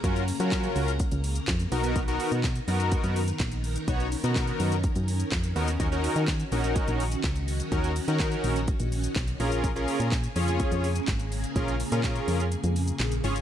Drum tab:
HH |xxoxxxoxxxoxxxox|xxoxxxoxxxoxxxox|xxoxxxoxxxoxxxox|xxoxxxoxxxoxxxox|
SH |xxxxxxxxxxxxxxxx|xxxxxxxxxxxxxxxx|xxxxxxxxxxxxxxxx|xxxxxxxxxxxxxxxx|
CP |----x-------x---|----x-------x---|----x-------x---|----x-------x---|
SD |----o-------o---|----o-------o---|----o-------o---|----o-------o---|
BD |o---o---o---o---|o---o---o---o---|o---o---o---o---|o---o---o---o---|

HH |xxoxxxoxxxoxxxox|xxoxxxoxxxoxxxox|xxoxxxoxxxoxxxox|
SH |xxxxxxxxxxxxxxxx|xxxxxxxxxxxxxxxx|xxxxxxxxxxxxxxxx|
CP |----x-------x---|----x-------x---|----x-------x---|
SD |----o-------o---|----o-------o---|----o-------o---|
BD |o---o---o---o---|o---o---o---o---|o---o-----------|